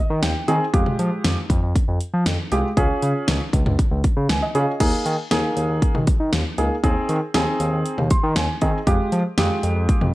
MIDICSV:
0, 0, Header, 1, 4, 480
1, 0, Start_track
1, 0, Key_signature, -4, "major"
1, 0, Tempo, 508475
1, 694, Time_signature, 4, 2, 24, 8
1, 9572, End_track
2, 0, Start_track
2, 0, Title_t, "Grand piano"
2, 0, Program_c, 0, 0
2, 0, Note_on_c, 0, 75, 71
2, 198, Note_off_c, 0, 75, 0
2, 213, Note_on_c, 0, 79, 69
2, 437, Note_off_c, 0, 79, 0
2, 453, Note_on_c, 0, 68, 92
2, 454, Note_on_c, 0, 60, 81
2, 454, Note_on_c, 0, 63, 71
2, 454, Note_on_c, 0, 80, 67
2, 602, Note_off_c, 0, 68, 0
2, 603, Note_off_c, 0, 60, 0
2, 603, Note_off_c, 0, 63, 0
2, 677, Note_off_c, 0, 80, 0
2, 693, Note_on_c, 0, 56, 82
2, 694, Note_on_c, 0, 67, 90
2, 695, Note_on_c, 0, 65, 76
2, 1288, Note_off_c, 0, 56, 0
2, 1288, Note_off_c, 0, 67, 0
2, 1289, Note_off_c, 0, 65, 0
2, 2377, Note_on_c, 0, 56, 77
2, 2377, Note_on_c, 0, 67, 89
2, 2378, Note_on_c, 0, 65, 74
2, 2524, Note_off_c, 0, 56, 0
2, 2524, Note_off_c, 0, 67, 0
2, 2525, Note_off_c, 0, 65, 0
2, 2616, Note_on_c, 0, 61, 83
2, 2616, Note_on_c, 0, 65, 77
2, 2616, Note_on_c, 0, 68, 89
2, 3209, Note_off_c, 0, 61, 0
2, 3209, Note_off_c, 0, 65, 0
2, 3210, Note_off_c, 0, 68, 0
2, 4056, Note_on_c, 0, 80, 71
2, 4167, Note_off_c, 0, 80, 0
2, 4176, Note_on_c, 0, 75, 69
2, 4295, Note_on_c, 0, 61, 76
2, 4295, Note_on_c, 0, 65, 73
2, 4295, Note_on_c, 0, 68, 85
2, 4443, Note_off_c, 0, 61, 0
2, 4443, Note_off_c, 0, 65, 0
2, 4443, Note_off_c, 0, 68, 0
2, 4510, Note_off_c, 0, 75, 0
2, 4535, Note_on_c, 0, 58, 80
2, 4535, Note_on_c, 0, 63, 76
2, 4535, Note_on_c, 0, 68, 91
2, 4831, Note_off_c, 0, 68, 0
2, 4832, Note_off_c, 0, 58, 0
2, 4832, Note_off_c, 0, 63, 0
2, 5012, Note_on_c, 0, 58, 80
2, 5012, Note_on_c, 0, 63, 75
2, 5013, Note_on_c, 0, 68, 90
2, 5607, Note_off_c, 0, 58, 0
2, 5607, Note_off_c, 0, 63, 0
2, 5608, Note_off_c, 0, 68, 0
2, 6213, Note_on_c, 0, 63, 65
2, 6214, Note_on_c, 0, 58, 74
2, 6214, Note_on_c, 0, 68, 80
2, 6362, Note_off_c, 0, 63, 0
2, 6363, Note_off_c, 0, 58, 0
2, 6363, Note_off_c, 0, 68, 0
2, 6452, Note_on_c, 0, 60, 83
2, 6452, Note_on_c, 0, 63, 78
2, 6453, Note_on_c, 0, 68, 92
2, 6750, Note_off_c, 0, 60, 0
2, 6750, Note_off_c, 0, 63, 0
2, 6751, Note_off_c, 0, 68, 0
2, 6934, Note_on_c, 0, 60, 81
2, 6934, Note_on_c, 0, 63, 74
2, 6934, Note_on_c, 0, 68, 90
2, 7528, Note_off_c, 0, 60, 0
2, 7528, Note_off_c, 0, 63, 0
2, 7528, Note_off_c, 0, 68, 0
2, 7654, Note_on_c, 0, 84, 69
2, 7877, Note_off_c, 0, 84, 0
2, 7894, Note_on_c, 0, 80, 70
2, 8118, Note_off_c, 0, 80, 0
2, 8134, Note_on_c, 0, 60, 74
2, 8135, Note_on_c, 0, 63, 71
2, 8135, Note_on_c, 0, 68, 81
2, 8135, Note_on_c, 0, 75, 71
2, 8283, Note_off_c, 0, 60, 0
2, 8283, Note_off_c, 0, 63, 0
2, 8283, Note_off_c, 0, 68, 0
2, 8358, Note_off_c, 0, 75, 0
2, 8374, Note_on_c, 0, 56, 87
2, 8374, Note_on_c, 0, 65, 76
2, 8374, Note_on_c, 0, 67, 94
2, 8671, Note_off_c, 0, 56, 0
2, 8671, Note_off_c, 0, 65, 0
2, 8671, Note_off_c, 0, 67, 0
2, 8853, Note_on_c, 0, 56, 82
2, 8853, Note_on_c, 0, 65, 77
2, 8853, Note_on_c, 0, 67, 92
2, 9448, Note_off_c, 0, 56, 0
2, 9448, Note_off_c, 0, 65, 0
2, 9448, Note_off_c, 0, 67, 0
2, 9572, End_track
3, 0, Start_track
3, 0, Title_t, "Analog synth bass"
3, 0, Program_c, 1, 38
3, 95, Note_on_c, 1, 51, 96
3, 198, Note_off_c, 1, 51, 0
3, 215, Note_on_c, 1, 39, 102
3, 318, Note_off_c, 1, 39, 0
3, 455, Note_on_c, 1, 51, 100
3, 558, Note_off_c, 1, 51, 0
3, 695, Note_on_c, 1, 41, 100
3, 798, Note_off_c, 1, 41, 0
3, 936, Note_on_c, 1, 53, 101
3, 1039, Note_off_c, 1, 53, 0
3, 1177, Note_on_c, 1, 41, 100
3, 1279, Note_off_c, 1, 41, 0
3, 1415, Note_on_c, 1, 41, 104
3, 1518, Note_off_c, 1, 41, 0
3, 1536, Note_on_c, 1, 41, 97
3, 1639, Note_off_c, 1, 41, 0
3, 1776, Note_on_c, 1, 41, 91
3, 1879, Note_off_c, 1, 41, 0
3, 2016, Note_on_c, 1, 53, 103
3, 2119, Note_off_c, 1, 53, 0
3, 2135, Note_on_c, 1, 41, 104
3, 2238, Note_off_c, 1, 41, 0
3, 2376, Note_on_c, 1, 36, 86
3, 2479, Note_off_c, 1, 36, 0
3, 2616, Note_on_c, 1, 37, 113
3, 2719, Note_off_c, 1, 37, 0
3, 2856, Note_on_c, 1, 49, 100
3, 2959, Note_off_c, 1, 49, 0
3, 3096, Note_on_c, 1, 37, 99
3, 3199, Note_off_c, 1, 37, 0
3, 3334, Note_on_c, 1, 37, 98
3, 3438, Note_off_c, 1, 37, 0
3, 3454, Note_on_c, 1, 37, 98
3, 3558, Note_off_c, 1, 37, 0
3, 3694, Note_on_c, 1, 37, 95
3, 3798, Note_off_c, 1, 37, 0
3, 3934, Note_on_c, 1, 49, 93
3, 4037, Note_off_c, 1, 49, 0
3, 4053, Note_on_c, 1, 37, 90
3, 4157, Note_off_c, 1, 37, 0
3, 4294, Note_on_c, 1, 49, 95
3, 4398, Note_off_c, 1, 49, 0
3, 4534, Note_on_c, 1, 39, 96
3, 4638, Note_off_c, 1, 39, 0
3, 4773, Note_on_c, 1, 51, 100
3, 4877, Note_off_c, 1, 51, 0
3, 5013, Note_on_c, 1, 39, 96
3, 5117, Note_off_c, 1, 39, 0
3, 5254, Note_on_c, 1, 39, 98
3, 5358, Note_off_c, 1, 39, 0
3, 5374, Note_on_c, 1, 39, 99
3, 5478, Note_off_c, 1, 39, 0
3, 5613, Note_on_c, 1, 39, 98
3, 5717, Note_off_c, 1, 39, 0
3, 5853, Note_on_c, 1, 51, 83
3, 5957, Note_off_c, 1, 51, 0
3, 5974, Note_on_c, 1, 39, 97
3, 6078, Note_off_c, 1, 39, 0
3, 6213, Note_on_c, 1, 37, 94
3, 6317, Note_off_c, 1, 37, 0
3, 6453, Note_on_c, 1, 39, 109
3, 6557, Note_off_c, 1, 39, 0
3, 6693, Note_on_c, 1, 51, 96
3, 6797, Note_off_c, 1, 51, 0
3, 6933, Note_on_c, 1, 39, 104
3, 7037, Note_off_c, 1, 39, 0
3, 7172, Note_on_c, 1, 39, 99
3, 7277, Note_off_c, 1, 39, 0
3, 7292, Note_on_c, 1, 39, 93
3, 7397, Note_off_c, 1, 39, 0
3, 7533, Note_on_c, 1, 39, 100
3, 7637, Note_off_c, 1, 39, 0
3, 7773, Note_on_c, 1, 51, 102
3, 7877, Note_off_c, 1, 51, 0
3, 7893, Note_on_c, 1, 39, 102
3, 7997, Note_off_c, 1, 39, 0
3, 8135, Note_on_c, 1, 51, 101
3, 8239, Note_off_c, 1, 51, 0
3, 8373, Note_on_c, 1, 41, 102
3, 8477, Note_off_c, 1, 41, 0
3, 8612, Note_on_c, 1, 53, 105
3, 8717, Note_off_c, 1, 53, 0
3, 8853, Note_on_c, 1, 41, 102
3, 8957, Note_off_c, 1, 41, 0
3, 9093, Note_on_c, 1, 41, 106
3, 9197, Note_off_c, 1, 41, 0
3, 9213, Note_on_c, 1, 41, 97
3, 9317, Note_off_c, 1, 41, 0
3, 9455, Note_on_c, 1, 41, 91
3, 9558, Note_off_c, 1, 41, 0
3, 9572, End_track
4, 0, Start_track
4, 0, Title_t, "Drums"
4, 214, Note_on_c, 9, 38, 114
4, 214, Note_on_c, 9, 42, 74
4, 308, Note_off_c, 9, 38, 0
4, 308, Note_off_c, 9, 42, 0
4, 454, Note_on_c, 9, 42, 68
4, 549, Note_off_c, 9, 42, 0
4, 695, Note_on_c, 9, 36, 109
4, 696, Note_on_c, 9, 42, 76
4, 790, Note_off_c, 9, 36, 0
4, 791, Note_off_c, 9, 42, 0
4, 815, Note_on_c, 9, 47, 84
4, 909, Note_off_c, 9, 47, 0
4, 935, Note_on_c, 9, 42, 68
4, 1030, Note_off_c, 9, 42, 0
4, 1175, Note_on_c, 9, 38, 105
4, 1175, Note_on_c, 9, 42, 64
4, 1269, Note_off_c, 9, 38, 0
4, 1269, Note_off_c, 9, 42, 0
4, 1415, Note_on_c, 9, 36, 90
4, 1417, Note_on_c, 9, 42, 68
4, 1509, Note_off_c, 9, 36, 0
4, 1511, Note_off_c, 9, 42, 0
4, 1657, Note_on_c, 9, 36, 90
4, 1658, Note_on_c, 9, 42, 71
4, 1752, Note_off_c, 9, 36, 0
4, 1753, Note_off_c, 9, 42, 0
4, 1893, Note_on_c, 9, 42, 71
4, 1987, Note_off_c, 9, 42, 0
4, 2134, Note_on_c, 9, 38, 110
4, 2134, Note_on_c, 9, 42, 77
4, 2228, Note_off_c, 9, 38, 0
4, 2228, Note_off_c, 9, 42, 0
4, 2376, Note_on_c, 9, 42, 65
4, 2470, Note_off_c, 9, 42, 0
4, 2615, Note_on_c, 9, 36, 107
4, 2616, Note_on_c, 9, 42, 76
4, 2710, Note_off_c, 9, 36, 0
4, 2711, Note_off_c, 9, 42, 0
4, 2855, Note_on_c, 9, 42, 67
4, 2949, Note_off_c, 9, 42, 0
4, 3095, Note_on_c, 9, 38, 111
4, 3095, Note_on_c, 9, 42, 64
4, 3189, Note_off_c, 9, 38, 0
4, 3190, Note_off_c, 9, 42, 0
4, 3335, Note_on_c, 9, 36, 88
4, 3337, Note_on_c, 9, 42, 67
4, 3429, Note_off_c, 9, 36, 0
4, 3431, Note_off_c, 9, 42, 0
4, 3456, Note_on_c, 9, 45, 92
4, 3550, Note_off_c, 9, 45, 0
4, 3577, Note_on_c, 9, 36, 92
4, 3577, Note_on_c, 9, 42, 68
4, 3672, Note_off_c, 9, 36, 0
4, 3672, Note_off_c, 9, 42, 0
4, 3813, Note_on_c, 9, 42, 68
4, 3816, Note_on_c, 9, 36, 92
4, 3908, Note_off_c, 9, 42, 0
4, 3910, Note_off_c, 9, 36, 0
4, 4054, Note_on_c, 9, 38, 112
4, 4054, Note_on_c, 9, 42, 76
4, 4148, Note_off_c, 9, 38, 0
4, 4148, Note_off_c, 9, 42, 0
4, 4294, Note_on_c, 9, 42, 68
4, 4389, Note_off_c, 9, 42, 0
4, 4534, Note_on_c, 9, 36, 106
4, 4534, Note_on_c, 9, 42, 75
4, 4534, Note_on_c, 9, 49, 85
4, 4628, Note_off_c, 9, 42, 0
4, 4628, Note_off_c, 9, 49, 0
4, 4629, Note_off_c, 9, 36, 0
4, 4774, Note_on_c, 9, 42, 69
4, 4868, Note_off_c, 9, 42, 0
4, 5014, Note_on_c, 9, 38, 112
4, 5014, Note_on_c, 9, 42, 65
4, 5108, Note_off_c, 9, 38, 0
4, 5108, Note_off_c, 9, 42, 0
4, 5256, Note_on_c, 9, 42, 70
4, 5350, Note_off_c, 9, 42, 0
4, 5496, Note_on_c, 9, 36, 88
4, 5497, Note_on_c, 9, 42, 68
4, 5590, Note_off_c, 9, 36, 0
4, 5591, Note_off_c, 9, 42, 0
4, 5615, Note_on_c, 9, 47, 81
4, 5710, Note_off_c, 9, 47, 0
4, 5732, Note_on_c, 9, 42, 72
4, 5734, Note_on_c, 9, 36, 92
4, 5826, Note_off_c, 9, 42, 0
4, 5829, Note_off_c, 9, 36, 0
4, 5972, Note_on_c, 9, 38, 110
4, 5972, Note_on_c, 9, 42, 77
4, 6067, Note_off_c, 9, 38, 0
4, 6067, Note_off_c, 9, 42, 0
4, 6212, Note_on_c, 9, 42, 68
4, 6307, Note_off_c, 9, 42, 0
4, 6453, Note_on_c, 9, 36, 105
4, 6454, Note_on_c, 9, 42, 74
4, 6548, Note_off_c, 9, 36, 0
4, 6548, Note_off_c, 9, 42, 0
4, 6693, Note_on_c, 9, 42, 70
4, 6787, Note_off_c, 9, 42, 0
4, 6932, Note_on_c, 9, 38, 107
4, 6932, Note_on_c, 9, 42, 65
4, 7027, Note_off_c, 9, 38, 0
4, 7027, Note_off_c, 9, 42, 0
4, 7174, Note_on_c, 9, 42, 71
4, 7269, Note_off_c, 9, 42, 0
4, 7416, Note_on_c, 9, 42, 70
4, 7510, Note_off_c, 9, 42, 0
4, 7534, Note_on_c, 9, 47, 80
4, 7628, Note_off_c, 9, 47, 0
4, 7651, Note_on_c, 9, 42, 74
4, 7654, Note_on_c, 9, 36, 93
4, 7745, Note_off_c, 9, 42, 0
4, 7748, Note_off_c, 9, 36, 0
4, 7891, Note_on_c, 9, 38, 113
4, 7891, Note_on_c, 9, 42, 77
4, 7985, Note_off_c, 9, 42, 0
4, 7986, Note_off_c, 9, 38, 0
4, 8132, Note_on_c, 9, 42, 67
4, 8136, Note_on_c, 9, 36, 85
4, 8226, Note_off_c, 9, 42, 0
4, 8230, Note_off_c, 9, 36, 0
4, 8373, Note_on_c, 9, 36, 111
4, 8373, Note_on_c, 9, 42, 77
4, 8467, Note_off_c, 9, 36, 0
4, 8467, Note_off_c, 9, 42, 0
4, 8611, Note_on_c, 9, 42, 70
4, 8706, Note_off_c, 9, 42, 0
4, 8852, Note_on_c, 9, 38, 108
4, 8852, Note_on_c, 9, 42, 67
4, 8946, Note_off_c, 9, 38, 0
4, 8946, Note_off_c, 9, 42, 0
4, 9093, Note_on_c, 9, 42, 71
4, 9188, Note_off_c, 9, 42, 0
4, 9334, Note_on_c, 9, 42, 70
4, 9335, Note_on_c, 9, 36, 93
4, 9429, Note_off_c, 9, 36, 0
4, 9429, Note_off_c, 9, 42, 0
4, 9453, Note_on_c, 9, 47, 80
4, 9547, Note_off_c, 9, 47, 0
4, 9572, End_track
0, 0, End_of_file